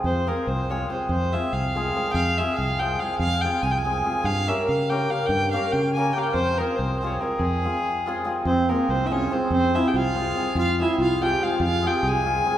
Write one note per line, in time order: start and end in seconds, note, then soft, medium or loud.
0.04 0.30 F2 medium
0.04 0.29 C5 medium
0.27 0.69 G#3 medium
0.27 0.42 C4 medium
0.27 0.42 F4 medium
0.27 0.42 G#4 medium
0.27 0.49 A#4 medium
0.47 0.84 C2 medium
0.47 0.72 C5 medium
0.70 0.88 G#3 medium
0.70 0.84 C4 medium
0.70 0.84 F4 medium
0.70 0.85 G#4 medium
0.70 0.90 C#5 medium
0.90 1.31 G#3 medium
0.90 1.04 C4 medium
0.90 1.04 F4 soft
0.90 1.05 G#4 medium
0.90 1.08 C5 medium
1.09 1.35 F2 medium
1.09 1.35 C5 medium
1.32 1.74 G#3 medium
1.32 1.47 C4 medium
1.32 1.47 F4 medium
1.32 1.48 G#4 medium
1.32 1.55 E5 medium
1.53 1.90 C2 medium
1.53 2.10 F5 medium
1.75 1.93 G#3 medium
1.75 1.89 C4 medium
1.75 1.90 F4 medium
1.75 1.90 G#4 medium
1.95 2.37 G#3 medium
1.95 2.09 C4 medium
1.95 2.10 F4 soft
1.95 2.10 G#4 medium
2.11 2.41 F2 loud
2.11 2.40 F5 loud
2.11 2.15 G5 medium
2.38 2.79 G#3 medium
2.38 2.53 C4 medium
2.38 2.53 F4 medium
2.38 2.53 G#4 medium
2.38 2.58 E5 loud
2.56 2.95 C2 medium
2.56 2.80 F5 medium
2.79 2.99 G#3 medium
2.79 2.95 C4 medium
2.79 2.95 F4 medium
2.79 2.95 G#4 medium
2.79 3.01 G5 medium
3.00 3.43 G#3 medium
3.00 3.15 C4 soft
3.00 3.15 F4 medium
3.00 3.15 G#4 medium
3.00 3.17 F5 medium
3.18 3.46 F2 loud
3.18 3.43 F5 loud
3.41 3.83 G#3 medium
3.41 3.59 C4 medium
3.41 3.64 G5 loud
3.46 3.59 F4 medium
3.46 3.59 G#4 medium
3.63 4.00 C2 medium
3.63 3.72 G#5 medium
3.71 3.79 G5 medium
3.78 4.27 G#5 medium
3.85 4.03 G#3 medium
3.85 4.00 C4 medium
3.85 4.00 F4 medium
3.85 4.01 G#4 medium
4.04 4.30 G#3 medium
4.04 4.20 C4 medium
4.04 4.20 F4 medium
4.04 4.20 G#4 medium
4.24 4.51 G2 medium
4.24 4.50 F5 loud
4.47 4.63 A#3 medium
4.47 4.63 C#4 medium
4.47 4.63 G4 medium
4.47 4.63 A#4 medium
4.47 4.66 E5 medium
4.67 5.06 C#3 medium
4.67 4.91 F5 medium
4.90 5.05 A#3 medium
4.90 5.05 C#4 medium
4.90 5.06 G4 medium
4.90 5.06 A#4 medium
4.90 5.12 G5 medium
5.10 5.24 A#3 medium
5.10 5.25 C#4 medium
5.10 5.25 G4 medium
5.10 5.26 A#4 medium
5.10 5.28 F5 medium
5.26 5.56 G2 medium
5.26 5.50 G5 loud
5.51 5.68 A#3 medium
5.51 5.69 C#4 medium
5.51 5.73 F5 medium
5.56 5.70 G4 medium
5.56 5.70 A#4 medium
5.72 6.10 C#3 medium
5.72 5.93 G5 medium
5.93 6.11 A#3 medium
5.93 6.14 G#5 medium
5.97 6.11 C#4 medium
5.97 6.11 G4 medium
5.97 6.12 A#4 medium
6.13 6.30 A#3 medium
6.13 6.30 G4 medium
6.13 6.20 G5 medium
6.17 6.31 C#4 medium
6.17 6.31 A#4 medium
6.17 6.23 F5 medium
6.22 6.32 G5 medium
6.31 6.61 F2 medium
6.31 6.59 C5 loud
6.58 7.01 G#3 medium
6.58 6.74 C4 medium
6.58 6.74 F4 medium
6.58 6.74 G#4 medium
6.58 6.77 A#4 medium
6.76 7.16 C2 medium
6.76 6.99 C5 medium
6.99 7.20 G#3 medium
6.99 7.16 C4 medium
6.99 7.08 C5 medium
7.04 7.17 F4 medium
7.04 7.17 G#4 medium
7.04 7.11 C#5 medium
7.09 7.21 C5 medium
7.20 7.62 G#3 medium
7.20 7.36 C4 soft
7.20 7.36 F4 medium
7.20 7.36 G#4 medium
7.20 7.41 A#4 medium
7.39 7.66 F2 medium
7.39 8.25 G#4 medium
7.63 8.05 G#3 medium
7.63 7.79 C4 medium
7.63 7.79 F4 medium
7.63 7.79 G#4 medium
8.06 8.23 G#3 medium
8.06 8.21 C4 medium
8.06 8.21 F4 medium
8.06 8.22 G#4 medium
8.24 8.51 G#3 medium
8.24 8.40 C4 medium
8.24 8.40 F4 medium
8.24 8.40 G#4 medium
8.45 8.72 F2 medium
8.45 8.73 C4 medium
8.45 8.70 C5 medium
8.69 9.09 G#3 medium
8.69 8.91 A#3 medium
8.69 8.84 C4 medium
8.69 8.84 F4 medium
8.69 8.84 G#4 medium
8.69 8.92 A#4 medium
8.89 9.26 C2 medium
8.89 9.08 C4 medium
8.89 9.08 C5 medium
9.06 9.14 E4 soft
9.06 9.14 E5 medium
9.11 9.29 G#3 medium
9.11 9.25 C4 medium
9.11 9.34 C#4 medium
9.11 9.26 F4 medium
9.11 9.26 G#4 medium
9.11 9.35 C#5 medium
9.30 9.72 G#3 medium
9.30 9.45 C4 medium
9.30 9.51 C4 medium
9.30 9.45 F4 medium
9.30 9.46 G#4 medium
9.30 9.52 C5 medium
9.50 9.77 F2 medium
9.50 9.78 C4 medium
9.50 9.77 C5 loud
9.74 10.14 G#3 medium
9.74 9.88 C4 medium
9.74 9.90 E4 medium
9.74 9.89 F4 medium
9.74 9.89 G#4 medium
9.74 9.89 E5 medium
9.87 9.97 G4 medium
9.87 9.98 G5 medium
9.94 10.31 C2 medium
9.94 10.56 F4 medium
9.94 10.56 F5 loud
10.15 10.34 G#3 medium
10.15 10.30 C4 medium
10.15 10.30 F4 medium
10.15 10.31 G#4 medium
10.35 10.79 G#3 medium
10.35 10.50 C4 medium
10.35 10.50 F4 medium
10.35 10.51 G#4 medium
10.55 10.81 F2 medium
10.55 10.78 F4 loud
10.55 10.79 F5 loud
10.79 11.20 G#3 medium
10.79 10.94 C4 medium
10.79 10.99 E4 medium
10.79 10.94 F4 medium
10.79 10.95 G#4 medium
10.79 10.99 E5 medium
10.98 11.35 C2 medium
10.98 11.21 F4 medium
10.98 11.21 F5 medium
11.21 11.39 G#3 medium
11.21 11.36 C4 medium
11.21 11.36 F4 medium
11.21 11.46 G4 medium
11.21 11.36 G#4 medium
11.21 11.45 G5 medium
11.40 11.81 G#3 medium
11.40 11.55 C4 medium
11.40 11.55 F4 medium
11.40 11.55 G#4 medium
11.40 11.61 F5 medium
11.45 11.62 F4 medium
11.60 11.86 F2 loud
11.60 11.88 F5 loud
11.65 11.90 F4 medium
11.83 12.23 G#3 medium
11.83 11.98 C4 medium
11.83 11.98 F4 medium
11.83 11.99 G#4 medium
11.83 12.10 G5 medium
11.88 12.09 G4 medium
12.03 12.40 C2 medium
12.08 12.58 G#4 loud
12.08 12.58 G#5 loud
12.24 12.44 G#3 medium
12.24 12.39 C4 medium
12.24 12.40 F4 medium
12.24 12.40 G#4 medium
12.45 12.58 G#3 medium
12.45 12.58 C4 medium
12.45 12.58 F4 medium
12.45 12.58 G#4 medium